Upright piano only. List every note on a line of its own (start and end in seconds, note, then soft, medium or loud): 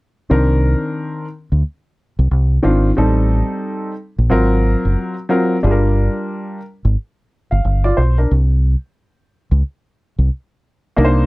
0.30 1.24 D#3 medium
0.30 1.24 C4 medium
0.30 1.25 D4 medium
0.30 1.25 A#4 medium
2.63 2.89 D#3 medium
2.63 2.89 C4 medium
2.63 2.89 D4 medium
2.63 2.90 F4 medium
2.97 3.91 G3 medium
2.97 3.91 C4 medium
2.97 3.91 D#4 medium
2.97 3.92 A4 medium
4.30 5.13 F#3 medium
4.30 5.14 C4 medium
4.30 5.14 F4 medium
4.30 5.14 A#4 medium
5.29 5.55 F#3 medium
5.29 5.56 C4 medium
5.29 5.56 F4 medium
5.29 5.56 A#4 medium
5.63 6.57 G3 medium
5.63 6.57 D4 medium
5.63 6.58 F4 medium
5.63 5.72 G#4 medium
5.71 6.61 A#4 medium
7.51 7.83 F5 medium
7.84 7.97 F4 medium
7.84 7.97 D5 medium
7.97 8.17 C5 medium
8.18 8.31 D4 soft
8.18 8.30 A#4 medium
10.96 11.26 A#3 medium
10.96 11.26 D4 medium
10.96 11.26 D#4 medium
10.96 11.06 A#4 medium
11.05 11.26 C5 medium